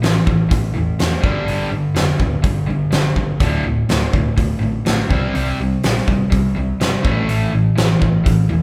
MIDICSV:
0, 0, Header, 1, 4, 480
1, 0, Start_track
1, 0, Tempo, 483871
1, 1466, Time_signature, 4, 2, 24, 8
1, 8556, End_track
2, 0, Start_track
2, 0, Title_t, "Overdriven electric guitar"
2, 0, Program_c, 0, 29
2, 19, Note_on_c, 0, 52, 68
2, 20, Note_on_c, 0, 45, 65
2, 239, Note_off_c, 0, 45, 0
2, 239, Note_off_c, 0, 52, 0
2, 262, Note_on_c, 0, 45, 58
2, 270, Note_on_c, 0, 52, 77
2, 472, Note_off_c, 0, 45, 0
2, 484, Note_off_c, 0, 52, 0
2, 484, Note_on_c, 0, 45, 71
2, 494, Note_on_c, 0, 52, 76
2, 711, Note_off_c, 0, 45, 0
2, 716, Note_off_c, 0, 52, 0
2, 731, Note_on_c, 0, 45, 68
2, 743, Note_on_c, 0, 52, 74
2, 955, Note_off_c, 0, 45, 0
2, 961, Note_off_c, 0, 52, 0
2, 984, Note_on_c, 0, 45, 69
2, 985, Note_on_c, 0, 52, 70
2, 1193, Note_off_c, 0, 45, 0
2, 1197, Note_on_c, 0, 43, 77
2, 1201, Note_off_c, 0, 52, 0
2, 1207, Note_on_c, 0, 50, 85
2, 1209, Note_on_c, 0, 55, 89
2, 1433, Note_off_c, 0, 43, 0
2, 1442, Note_off_c, 0, 50, 0
2, 1443, Note_off_c, 0, 55, 0
2, 1445, Note_on_c, 0, 43, 76
2, 1452, Note_on_c, 0, 50, 79
2, 1453, Note_on_c, 0, 55, 77
2, 1676, Note_off_c, 0, 43, 0
2, 1679, Note_off_c, 0, 50, 0
2, 1685, Note_off_c, 0, 55, 0
2, 1688, Note_on_c, 0, 43, 61
2, 1691, Note_on_c, 0, 50, 75
2, 1913, Note_off_c, 0, 43, 0
2, 1914, Note_off_c, 0, 50, 0
2, 1931, Note_on_c, 0, 50, 73
2, 1932, Note_on_c, 0, 43, 67
2, 2154, Note_off_c, 0, 50, 0
2, 2155, Note_off_c, 0, 43, 0
2, 2172, Note_on_c, 0, 43, 64
2, 2181, Note_on_c, 0, 50, 71
2, 2391, Note_off_c, 0, 43, 0
2, 2399, Note_off_c, 0, 50, 0
2, 2403, Note_on_c, 0, 43, 72
2, 2412, Note_on_c, 0, 50, 76
2, 2630, Note_off_c, 0, 43, 0
2, 2635, Note_off_c, 0, 50, 0
2, 2642, Note_on_c, 0, 43, 63
2, 2651, Note_on_c, 0, 50, 69
2, 2870, Note_off_c, 0, 43, 0
2, 2874, Note_off_c, 0, 50, 0
2, 2883, Note_on_c, 0, 43, 65
2, 2885, Note_on_c, 0, 50, 69
2, 3110, Note_off_c, 0, 43, 0
2, 3112, Note_off_c, 0, 50, 0
2, 3137, Note_on_c, 0, 43, 55
2, 3144, Note_on_c, 0, 50, 74
2, 3358, Note_off_c, 0, 43, 0
2, 3361, Note_off_c, 0, 50, 0
2, 3373, Note_on_c, 0, 38, 70
2, 3379, Note_on_c, 0, 50, 80
2, 3382, Note_on_c, 0, 45, 77
2, 3605, Note_off_c, 0, 38, 0
2, 3608, Note_off_c, 0, 50, 0
2, 3609, Note_off_c, 0, 45, 0
2, 3619, Note_on_c, 0, 38, 70
2, 3620, Note_on_c, 0, 45, 66
2, 3838, Note_off_c, 0, 38, 0
2, 3839, Note_off_c, 0, 45, 0
2, 3862, Note_on_c, 0, 38, 58
2, 3869, Note_on_c, 0, 45, 74
2, 4080, Note_off_c, 0, 38, 0
2, 4084, Note_off_c, 0, 45, 0
2, 4099, Note_on_c, 0, 38, 63
2, 4101, Note_on_c, 0, 45, 78
2, 4319, Note_off_c, 0, 38, 0
2, 4320, Note_off_c, 0, 45, 0
2, 4330, Note_on_c, 0, 38, 62
2, 4331, Note_on_c, 0, 45, 79
2, 4540, Note_off_c, 0, 38, 0
2, 4544, Note_off_c, 0, 45, 0
2, 4552, Note_on_c, 0, 38, 62
2, 4556, Note_on_c, 0, 45, 71
2, 4785, Note_off_c, 0, 38, 0
2, 4787, Note_off_c, 0, 45, 0
2, 4812, Note_on_c, 0, 38, 61
2, 4821, Note_on_c, 0, 45, 77
2, 5035, Note_off_c, 0, 38, 0
2, 5040, Note_off_c, 0, 45, 0
2, 5046, Note_on_c, 0, 48, 83
2, 5055, Note_on_c, 0, 55, 95
2, 5058, Note_on_c, 0, 60, 85
2, 5282, Note_off_c, 0, 48, 0
2, 5287, Note_off_c, 0, 55, 0
2, 5288, Note_off_c, 0, 60, 0
2, 5299, Note_on_c, 0, 55, 77
2, 5302, Note_on_c, 0, 48, 72
2, 5303, Note_on_c, 0, 60, 88
2, 5528, Note_off_c, 0, 55, 0
2, 5530, Note_off_c, 0, 48, 0
2, 5530, Note_off_c, 0, 60, 0
2, 5547, Note_on_c, 0, 48, 62
2, 5553, Note_on_c, 0, 55, 66
2, 5763, Note_off_c, 0, 48, 0
2, 5766, Note_off_c, 0, 55, 0
2, 5791, Note_on_c, 0, 48, 67
2, 5793, Note_on_c, 0, 55, 62
2, 6005, Note_off_c, 0, 48, 0
2, 6006, Note_off_c, 0, 55, 0
2, 6029, Note_on_c, 0, 48, 66
2, 6031, Note_on_c, 0, 55, 75
2, 6237, Note_off_c, 0, 48, 0
2, 6242, Note_off_c, 0, 55, 0
2, 6249, Note_on_c, 0, 48, 72
2, 6254, Note_on_c, 0, 55, 79
2, 6474, Note_off_c, 0, 48, 0
2, 6477, Note_off_c, 0, 55, 0
2, 6496, Note_on_c, 0, 48, 66
2, 6507, Note_on_c, 0, 55, 73
2, 6718, Note_off_c, 0, 48, 0
2, 6724, Note_off_c, 0, 55, 0
2, 6747, Note_on_c, 0, 55, 73
2, 6748, Note_on_c, 0, 48, 66
2, 6962, Note_off_c, 0, 48, 0
2, 6963, Note_off_c, 0, 55, 0
2, 6966, Note_on_c, 0, 45, 89
2, 6973, Note_on_c, 0, 52, 77
2, 6977, Note_on_c, 0, 57, 101
2, 7203, Note_off_c, 0, 45, 0
2, 7206, Note_off_c, 0, 52, 0
2, 7208, Note_off_c, 0, 57, 0
2, 7218, Note_on_c, 0, 45, 73
2, 7223, Note_on_c, 0, 52, 79
2, 7227, Note_on_c, 0, 57, 90
2, 7435, Note_off_c, 0, 52, 0
2, 7439, Note_off_c, 0, 45, 0
2, 7447, Note_on_c, 0, 52, 73
2, 7451, Note_on_c, 0, 45, 66
2, 7453, Note_off_c, 0, 57, 0
2, 7674, Note_off_c, 0, 52, 0
2, 7676, Note_off_c, 0, 45, 0
2, 7693, Note_on_c, 0, 45, 67
2, 7700, Note_on_c, 0, 52, 78
2, 7917, Note_off_c, 0, 45, 0
2, 7918, Note_off_c, 0, 52, 0
2, 7929, Note_on_c, 0, 45, 67
2, 7930, Note_on_c, 0, 52, 69
2, 8155, Note_off_c, 0, 45, 0
2, 8156, Note_off_c, 0, 52, 0
2, 8172, Note_on_c, 0, 45, 77
2, 8180, Note_on_c, 0, 52, 85
2, 8397, Note_off_c, 0, 45, 0
2, 8401, Note_off_c, 0, 52, 0
2, 8423, Note_on_c, 0, 45, 63
2, 8426, Note_on_c, 0, 52, 74
2, 8556, Note_off_c, 0, 45, 0
2, 8556, Note_off_c, 0, 52, 0
2, 8556, End_track
3, 0, Start_track
3, 0, Title_t, "Picked electric bass"
3, 0, Program_c, 1, 34
3, 14, Note_on_c, 1, 33, 82
3, 168, Note_off_c, 1, 33, 0
3, 269, Note_on_c, 1, 33, 79
3, 418, Note_off_c, 1, 33, 0
3, 511, Note_on_c, 1, 33, 89
3, 659, Note_off_c, 1, 33, 0
3, 755, Note_on_c, 1, 28, 78
3, 902, Note_off_c, 1, 28, 0
3, 1000, Note_on_c, 1, 40, 82
3, 1146, Note_off_c, 1, 40, 0
3, 1227, Note_on_c, 1, 31, 70
3, 1376, Note_off_c, 1, 31, 0
3, 1467, Note_on_c, 1, 31, 76
3, 1616, Note_off_c, 1, 31, 0
3, 1698, Note_on_c, 1, 31, 78
3, 1850, Note_off_c, 1, 31, 0
3, 1924, Note_on_c, 1, 29, 84
3, 2080, Note_off_c, 1, 29, 0
3, 2177, Note_on_c, 1, 26, 76
3, 2329, Note_off_c, 1, 26, 0
3, 2426, Note_on_c, 1, 31, 85
3, 2576, Note_off_c, 1, 31, 0
3, 2664, Note_on_c, 1, 31, 74
3, 2814, Note_off_c, 1, 31, 0
3, 2905, Note_on_c, 1, 31, 77
3, 3055, Note_off_c, 1, 31, 0
3, 3135, Note_on_c, 1, 31, 73
3, 3288, Note_off_c, 1, 31, 0
3, 3384, Note_on_c, 1, 26, 82
3, 3534, Note_off_c, 1, 26, 0
3, 3638, Note_on_c, 1, 26, 83
3, 3784, Note_off_c, 1, 26, 0
3, 3882, Note_on_c, 1, 26, 78
3, 4027, Note_off_c, 1, 26, 0
3, 4102, Note_on_c, 1, 26, 83
3, 4253, Note_off_c, 1, 26, 0
3, 4341, Note_on_c, 1, 26, 79
3, 4492, Note_off_c, 1, 26, 0
3, 4584, Note_on_c, 1, 33, 77
3, 4735, Note_off_c, 1, 33, 0
3, 4834, Note_on_c, 1, 33, 76
3, 4982, Note_off_c, 1, 33, 0
3, 5062, Note_on_c, 1, 36, 73
3, 5213, Note_off_c, 1, 36, 0
3, 5315, Note_on_c, 1, 36, 83
3, 5462, Note_off_c, 1, 36, 0
3, 5547, Note_on_c, 1, 36, 83
3, 5696, Note_off_c, 1, 36, 0
3, 5793, Note_on_c, 1, 34, 74
3, 5941, Note_off_c, 1, 34, 0
3, 6027, Note_on_c, 1, 31, 87
3, 6177, Note_off_c, 1, 31, 0
3, 6271, Note_on_c, 1, 36, 85
3, 6419, Note_off_c, 1, 36, 0
3, 6520, Note_on_c, 1, 36, 73
3, 6666, Note_off_c, 1, 36, 0
3, 6758, Note_on_c, 1, 31, 80
3, 6905, Note_off_c, 1, 31, 0
3, 6992, Note_on_c, 1, 33, 78
3, 7141, Note_off_c, 1, 33, 0
3, 7231, Note_on_c, 1, 33, 83
3, 7380, Note_off_c, 1, 33, 0
3, 7476, Note_on_c, 1, 33, 90
3, 7623, Note_off_c, 1, 33, 0
3, 7723, Note_on_c, 1, 33, 83
3, 7869, Note_off_c, 1, 33, 0
3, 7951, Note_on_c, 1, 33, 81
3, 8100, Note_off_c, 1, 33, 0
3, 8197, Note_on_c, 1, 33, 89
3, 8345, Note_off_c, 1, 33, 0
3, 8430, Note_on_c, 1, 28, 78
3, 8556, Note_off_c, 1, 28, 0
3, 8556, End_track
4, 0, Start_track
4, 0, Title_t, "Drums"
4, 30, Note_on_c, 9, 46, 49
4, 40, Note_on_c, 9, 38, 105
4, 129, Note_off_c, 9, 46, 0
4, 139, Note_off_c, 9, 38, 0
4, 268, Note_on_c, 9, 36, 89
4, 367, Note_off_c, 9, 36, 0
4, 508, Note_on_c, 9, 36, 101
4, 513, Note_on_c, 9, 46, 45
4, 607, Note_off_c, 9, 36, 0
4, 612, Note_off_c, 9, 46, 0
4, 985, Note_on_c, 9, 46, 48
4, 995, Note_on_c, 9, 38, 99
4, 1084, Note_off_c, 9, 46, 0
4, 1094, Note_off_c, 9, 38, 0
4, 1226, Note_on_c, 9, 36, 95
4, 1325, Note_off_c, 9, 36, 0
4, 1466, Note_on_c, 9, 46, 52
4, 1565, Note_off_c, 9, 46, 0
4, 1940, Note_on_c, 9, 46, 50
4, 1950, Note_on_c, 9, 38, 104
4, 2039, Note_off_c, 9, 46, 0
4, 2049, Note_off_c, 9, 38, 0
4, 2179, Note_on_c, 9, 36, 85
4, 2278, Note_off_c, 9, 36, 0
4, 2417, Note_on_c, 9, 46, 46
4, 2419, Note_on_c, 9, 36, 92
4, 2516, Note_off_c, 9, 46, 0
4, 2518, Note_off_c, 9, 36, 0
4, 2894, Note_on_c, 9, 46, 42
4, 2904, Note_on_c, 9, 38, 102
4, 2994, Note_off_c, 9, 46, 0
4, 3004, Note_off_c, 9, 38, 0
4, 3137, Note_on_c, 9, 36, 67
4, 3236, Note_off_c, 9, 36, 0
4, 3375, Note_on_c, 9, 46, 50
4, 3377, Note_on_c, 9, 36, 100
4, 3474, Note_off_c, 9, 46, 0
4, 3476, Note_off_c, 9, 36, 0
4, 3858, Note_on_c, 9, 46, 43
4, 3868, Note_on_c, 9, 38, 102
4, 3957, Note_off_c, 9, 46, 0
4, 3967, Note_off_c, 9, 38, 0
4, 4101, Note_on_c, 9, 36, 84
4, 4200, Note_off_c, 9, 36, 0
4, 4341, Note_on_c, 9, 36, 92
4, 4342, Note_on_c, 9, 46, 46
4, 4440, Note_off_c, 9, 36, 0
4, 4441, Note_off_c, 9, 46, 0
4, 4818, Note_on_c, 9, 46, 48
4, 4828, Note_on_c, 9, 38, 100
4, 4918, Note_off_c, 9, 46, 0
4, 4927, Note_off_c, 9, 38, 0
4, 5064, Note_on_c, 9, 36, 89
4, 5163, Note_off_c, 9, 36, 0
4, 5305, Note_on_c, 9, 46, 52
4, 5404, Note_off_c, 9, 46, 0
4, 5786, Note_on_c, 9, 46, 50
4, 5795, Note_on_c, 9, 38, 94
4, 5885, Note_off_c, 9, 46, 0
4, 5895, Note_off_c, 9, 38, 0
4, 5930, Note_on_c, 9, 38, 28
4, 6029, Note_off_c, 9, 38, 0
4, 6029, Note_on_c, 9, 36, 87
4, 6128, Note_off_c, 9, 36, 0
4, 6271, Note_on_c, 9, 36, 95
4, 6274, Note_on_c, 9, 46, 45
4, 6370, Note_off_c, 9, 36, 0
4, 6373, Note_off_c, 9, 46, 0
4, 6750, Note_on_c, 9, 46, 45
4, 6760, Note_on_c, 9, 38, 98
4, 6850, Note_off_c, 9, 46, 0
4, 6859, Note_off_c, 9, 38, 0
4, 6990, Note_on_c, 9, 36, 96
4, 7090, Note_off_c, 9, 36, 0
4, 7228, Note_on_c, 9, 46, 49
4, 7328, Note_off_c, 9, 46, 0
4, 7712, Note_on_c, 9, 46, 45
4, 7722, Note_on_c, 9, 38, 105
4, 7811, Note_off_c, 9, 46, 0
4, 7821, Note_off_c, 9, 38, 0
4, 7953, Note_on_c, 9, 36, 84
4, 8053, Note_off_c, 9, 36, 0
4, 8196, Note_on_c, 9, 36, 105
4, 8200, Note_on_c, 9, 46, 47
4, 8295, Note_off_c, 9, 36, 0
4, 8300, Note_off_c, 9, 46, 0
4, 8556, End_track
0, 0, End_of_file